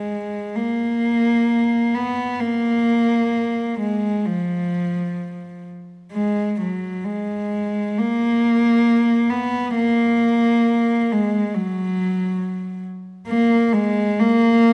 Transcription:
cello
Already playing: G#3
0.56 A#3
1.95 B3
2.40 A#3
3.80 G#3
4.26 F3
6.13 G#3
6.61 F#3
7.05 G#3
7.99 A#3
9.30 B3
9.76 A#3
11.13 G#3
11.55 F#3
13.28 A#3
13.73 G#3
14.20 A#3

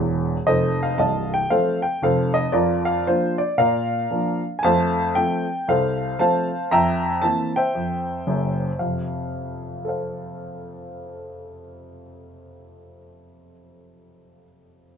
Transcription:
grand piano
Already playing: E1 E2
0.47 F1 F2 A4 C5 D#5
0.83 F5
0.98 C1 C2 D#5 F5 A5
1.34 G5
1.50 F3 A3 C4 A4 C5 F5
1.82 G5
2.02 F1 F2 A4 C5 F5
2.34 D#5
2.52 F2 F4 A#4 D5
2.85 F5
3.07 F3 A#3 D4 F4 C5
3.38 D5
3.58 A#2 A#4 D5 F5
4.11 F3 A#3 D4
4.59 G#5
4.63 F2 A3 C5 F5 A5
5.15 F3 A3 C4 G5
5.68 C2 A4 C5 F5
6.19 F3 A3 C4 C5 F5 A5
6.71 F2 E5 G5 A#5
7.22 E3 A#3 C4 A5
7.56 C5 E5 G5
7.75 F2
8.27 F#1 F#2
8.79 F2 C3 F5
9.85 A4 C5
9.89 F5

